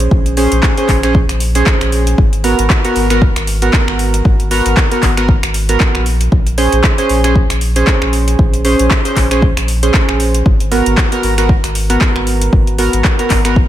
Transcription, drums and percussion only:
0.00 closed hi-hat medium
0.11 kick loud
0.26 closed hi-hat soft
0.37 open hi-hat loud
0.52 closed hi-hat medium
0.63 kick loud
0.63 clap loud
0.77 closed hi-hat soft
0.89 kick medium
0.89 clap medium
0.89 open hi-hat loud
1.03 finger snap medium
1.03 closed hi-hat medium
1.15 kick loud
1.29 finger snap medium
1.29 closed hi-hat medium
1.40 open hi-hat loud
1.55 closed hi-hat medium
1.66 kick loud
1.66 clap loud
1.81 finger snap medium
1.81 closed hi-hat soft
1.92 open hi-hat loud
2.07 closed hi-hat medium
2.18 kick loud
2.33 closed hi-hat soft
2.44 open hi-hat loud
2.59 closed hi-hat medium
2.70 kick loud
2.70 clap loud
2.85 closed hi-hat medium
2.96 open hi-hat loud
3.10 finger snap medium
3.10 closed hi-hat medium
3.22 kick loud
3.36 finger snap medium
3.36 closed hi-hat medium
3.47 open hi-hat loud
3.62 closed hi-hat medium
3.73 kick loud
3.73 clap loud
3.88 finger snap medium
3.99 open hi-hat medium
4.14 closed hi-hat medium
4.25 kick loud
4.40 closed hi-hat soft
4.51 open hi-hat loud
4.66 closed hi-hat medium
4.77 kick loud
4.77 clap loud
4.92 closed hi-hat medium
5.03 kick medium
5.03 clap medium
5.03 open hi-hat medium
5.17 finger snap medium
5.17 closed hi-hat medium
5.29 kick loud
5.43 finger snap medium
5.43 closed hi-hat medium
5.54 open hi-hat loud
5.69 closed hi-hat medium
5.80 kick loud
5.80 clap loud
5.95 finger snap medium
6.06 open hi-hat medium
6.21 closed hi-hat medium
6.32 kick loud
6.47 closed hi-hat soft
6.58 open hi-hat loud
6.72 closed hi-hat medium
6.84 kick loud
6.84 clap loud
6.98 closed hi-hat medium
7.09 open hi-hat medium
7.24 finger snap medium
7.24 closed hi-hat medium
7.35 kick loud
7.50 finger snap medium
7.50 closed hi-hat medium
7.61 open hi-hat loud
7.76 closed hi-hat medium
7.87 kick loud
7.87 clap loud
8.02 finger snap medium
8.13 open hi-hat medium
8.28 closed hi-hat medium
8.39 kick loud
8.54 closed hi-hat soft
8.65 open hi-hat loud
8.79 closed hi-hat medium
8.91 kick loud
8.91 clap loud
9.05 closed hi-hat medium
9.16 kick medium
9.16 clap medium
9.16 open hi-hat medium
9.31 finger snap medium
9.31 closed hi-hat medium
9.42 kick loud
9.57 finger snap medium
9.57 closed hi-hat medium
9.68 open hi-hat loud
9.83 closed hi-hat medium
9.94 kick loud
9.94 clap loud
10.09 finger snap medium
10.20 open hi-hat medium
10.34 closed hi-hat medium
10.46 kick loud
10.60 closed hi-hat soft
10.72 open hi-hat loud
10.86 closed hi-hat medium
10.97 kick loud
10.97 clap loud
11.12 closed hi-hat medium
11.23 open hi-hat loud
11.38 finger snap medium
11.38 closed hi-hat medium
11.49 kick loud
11.64 finger snap medium
11.64 closed hi-hat medium
11.75 open hi-hat loud
11.90 closed hi-hat medium
12.01 kick loud
12.01 clap loud
12.16 finger snap medium
12.27 open hi-hat medium
12.41 closed hi-hat medium
12.53 kick loud
12.67 closed hi-hat soft
12.78 open hi-hat loud
12.93 closed hi-hat medium
13.04 kick loud
13.04 clap loud
13.19 closed hi-hat medium
13.30 kick medium
13.30 clap medium
13.30 open hi-hat loud
13.45 finger snap medium
13.45 closed hi-hat medium
13.56 kick loud

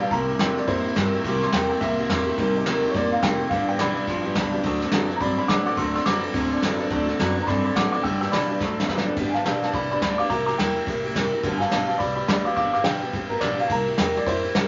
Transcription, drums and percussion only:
0.11 kick loud
0.11 ride medium
0.28 ride medium
0.39 snare loud
0.39 ride medium
0.57 snare soft
0.57 ride medium
0.68 kick loud
0.68 ride medium
0.85 ride medium
0.96 kick medium
0.96 snare loud
0.96 ride medium
1.13 ride medium
1.24 kick loud
1.24 ride medium
1.42 snare soft
1.42 ride medium
1.52 snare loud
1.52 ride medium
1.70 ride medium
1.81 kick loud
1.81 snare soft
1.81 ride medium
1.98 ride medium
2.09 kick medium
2.09 snare loud
2.09 ride medium
2.27 ride medium
2.38 kick loud
2.38 ride medium
2.55 ride medium
2.66 snare loud
2.66 ride medium
2.83 ride medium
2.94 kick loud
2.94 snare soft
2.94 ride medium
3.12 ride medium
3.23 kick medium
3.23 snare loud
3.23 ride medium
3.40 ride medium
3.51 kick loud
3.51 ride medium
3.68 ride medium
3.79 snare loud
3.79 ride medium
3.96 ride medium
4.07 kick loud
4.07 snare soft
4.07 ride medium
4.25 ride medium
4.35 kick medium
4.35 snare loud
4.35 ride medium
4.52 ride medium
4.63 kick loud
4.63 ride medium
4.81 snare soft
4.81 ride medium
4.92 snare loud
4.92 ride medium
5.10 snare soft
5.10 ride medium
5.21 kick loud
5.21 ride medium
5.38 ride medium
5.49 kick medium
5.49 snare loud
5.49 ride medium
5.66 ride medium
5.77 kick loud
5.77 ride medium
5.95 snare soft
5.95 ride medium
6.06 snare loud
6.06 ride loud
6.23 ride medium
6.34 kick loud
6.34 snare soft
6.34 ride medium
6.51 ride medium
6.62 kick medium
6.62 snare loud
6.62 ride medium
6.80 ride medium
6.91 kick loud
6.91 ride medium
7.08 snare soft
7.08 ride medium
7.20 snare loud
7.20 ride medium
7.37 ride medium
7.47 kick loud
7.47 snare soft
7.47 ride medium
7.65 ride medium
7.76 kick medium
7.76 snare loud
7.76 ride medium
7.94 ride medium
8.04 kick loud
8.04 ride medium
8.22 snare soft
8.22 ride medium
8.33 snare loud
8.33 ride medium
8.50 ride medium
8.61 kick loud
8.61 snare medium
8.80 snare medium
8.89 kick medium
8.89 snare medium
8.98 snare medium
9.16 kick loud
9.16 crash medium
9.35 snare soft
9.35 ride medium
9.45 snare loud
9.45 ride medium
9.63 snare soft
9.63 ride medium
9.74 kick loud
9.74 ride medium
9.91 ride medium
10.02 kick medium
10.02 snare loud
10.02 ride medium
10.19 ride medium
10.30 kick loud
10.30 ride medium
10.48 snare soft
10.48 ride medium
10.59 snare loud
10.59 ride medium
10.76 ride medium
10.87 kick loud
10.87 snare soft
10.87 ride loud
11.05 ride medium
11.15 kick medium
11.15 snare loud
11.15 ride medium
11.33 ride medium
11.44 kick loud
11.44 ride medium
11.61 snare soft
11.61 ride medium
11.71 snare loud
11.71 ride medium
11.90 snare soft
11.90 ride medium
12.00 kick loud
12.00 ride medium
12.18 ride medium
12.28 kick medium
12.28 snare loud
12.28 ride medium
12.46 ride medium
12.57 kick loud
12.57 ride medium
12.74 snare soft
12.74 ride medium
12.84 snare loud
12.84 ride medium
13.02 ride medium
13.13 kick loud
13.13 ride medium
13.31 ride medium
13.41 kick medium
13.41 snare loud
13.41 ride medium
13.59 ride medium
13.69 kick loud
13.69 ride medium
13.87 ride medium
13.98 snare loud
13.98 ride medium
14.16 snare soft
14.16 ride medium
14.27 kick loud
14.27 ride medium
14.43 ride medium
14.55 kick medium
14.55 snare loud
14.55 ride medium

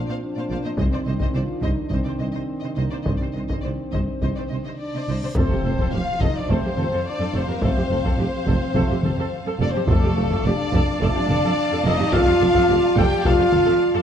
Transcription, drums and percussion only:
0.77 taiko medium
1.20 taiko medium
1.62 taiko medium
1.90 taiko medium
3.06 taiko medium
3.49 taiko medium
3.93 taiko medium
4.22 taiko medium
5.36 taiko medium
5.79 taiko medium
6.21 taiko medium
6.49 taiko medium
6.77 taiko mid medium
7.62 taiko loud
8.05 taiko medium
8.46 taiko medium
8.75 taiko medium
9.03 taiko mid medium
9.88 taiko loud
10.30 taiko medium
10.72 taiko medium
11.01 taiko medium
11.29 taiko mid medium
12.13 taiko loud
12.55 taiko medium
12.97 taiko medium
13.25 taiko medium
13.53 taiko mid medium

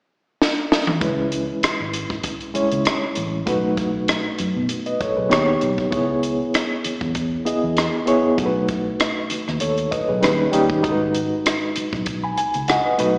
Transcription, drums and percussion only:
0.42 snare medium
0.72 snare medium
0.87 mid tom medium
1.01 kick loud
1.01 closed hi-hat medium
1.32 closed hi-hat medium
1.63 cross-stick loud
1.63 closed hi-hat medium
1.93 closed hi-hat medium
2.10 kick medium
2.23 kick medium
2.23 closed hi-hat medium
2.41 closed hi-hat soft
2.55 closed hi-hat medium
2.71 closed hi-hat soft
2.85 cross-stick loud
2.85 closed hi-hat medium
3.15 closed hi-hat medium
3.47 kick loud
3.47 closed hi-hat medium
3.77 kick medium
3.77 closed hi-hat medium
4.08 cross-stick loud
4.08 closed hi-hat medium
4.38 closed hi-hat medium
4.69 closed hi-hat medium
4.86 closed hi-hat soft
5.01 kick medium
5.01 closed hi-hat medium
5.31 cross-stick loud
5.31 closed hi-hat medium
5.61 closed hi-hat medium
5.78 kick medium
5.92 kick loud
5.92 closed hi-hat medium
6.23 closed hi-hat medium
6.54 cross-stick loud
6.54 closed hi-hat medium
6.84 closed hi-hat medium
7.01 kick medium
7.15 kick medium
7.15 closed hi-hat medium
7.46 closed hi-hat medium
7.77 cross-stick medium
7.77 closed hi-hat medium
8.07 closed hi-hat medium
8.38 kick loud
8.38 closed hi-hat medium
8.68 kick medium
8.68 closed hi-hat medium
9.00 cross-stick loud
9.00 closed hi-hat medium
9.30 closed hi-hat medium
9.48 cross-stick soft
9.60 closed hi-hat medium
9.78 closed hi-hat soft
9.92 kick medium
9.92 closed hi-hat medium
10.23 cross-stick medium
10.23 closed hi-hat medium
10.53 closed hi-hat medium
10.70 kick medium
10.84 kick loud
10.84 closed hi-hat medium
11.14 closed hi-hat medium
11.46 cross-stick loud
11.46 closed hi-hat medium
11.76 closed hi-hat medium
11.93 kick medium
11.93 cross-stick soft
12.06 kick medium
12.06 closed hi-hat medium
12.37 closed hi-hat medium
12.54 closed hi-hat soft
12.68 cross-stick medium
12.68 closed hi-hat medium
12.99 closed hi-hat medium

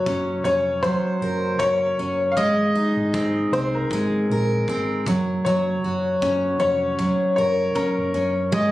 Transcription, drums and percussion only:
0.06 kick loud
0.83 kick medium
1.60 kick medium
2.37 kick medium
3.14 kick loud
3.91 kick medium
4.68 kick medium
5.06 kick medium
6.22 kick loud
6.99 kick medium
7.76 kick medium
8.53 kick medium

